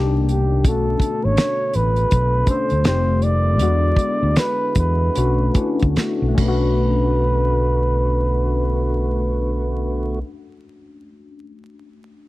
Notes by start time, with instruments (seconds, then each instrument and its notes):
Already playing: fingered electric bass C2, tonewheel organ B2 D#3 A#3, tine electric piano A#3 D4 D#4 G4
0.29 flugelhorn G4, closed hi-hat
0.64 fingered electric bass B1, tonewheel organ B2 D3 A3, tine electric piano A3 C#4 D4, flugelhorn A4, kick, closed hi-hat
0.69 tine electric piano F#4
1.00 kick, closed hi-hat
1.25 fingered electric bass G#1, flugelhorn C#5
1.37 finger snap, snare, closed hi-hat
1.74 fingered electric bass A1, flugelhorn B4, closed hi-hat
1.96 closed hi-hat
2.11 fingered electric bass B1, kick, closed hi-hat
2.46 tine electric piano A3 C#4 D4, flugelhorn C5, kick, closed hi-hat
2.51 tine electric piano A4
2.70 fingered electric bass D2, closed hi-hat
2.83 fingered electric bass F1, tonewheel organ D#3 G3 F4, tine electric piano G#3 C4 D#4, finger snap, snare, closed hi-hat
2.87 tine electric piano A3 G4, flugelhorn C5
3.22 flugelhorn D5, closed hi-hat
3.58 fingered electric bass E2, tonewheel organ D3 G#3 B3 E4, tine electric piano G#3 B3 D4, closed hi-hat
3.63 tine electric piano F#4
3.96 kick, closed hi-hat
4.23 fingered electric bass D2
4.36 flugelhorn B4, finger snap, snare, closed hi-hat
4.75 fingered electric bass E2, flugelhorn B4, kick, closed hi-hat
5.14 fingered electric bass B1, tine electric piano A3 C#4 D4, tonewheel organ A3 F#4, closed hi-hat
5.18 tine electric piano F#4
5.54 tine electric piano A3 C#4 D4, kick, closed hi-hat
5.58 tine electric piano E4
5.79 fingered electric bass D2, kick, closed hi-hat
5.96 finger snap, muted fingered electric bass stroke, snare, closed hi-hat
6.22 fingered electric bass B1
6.28 tine electric piano A3
6.35 fingered electric bass B1, tonewheel organ D3 A3 B3 F#4, tine electric piano C#4, kick, crash
6.40 tine electric piano D4, flugelhorn B4
6.48 tine electric piano F#4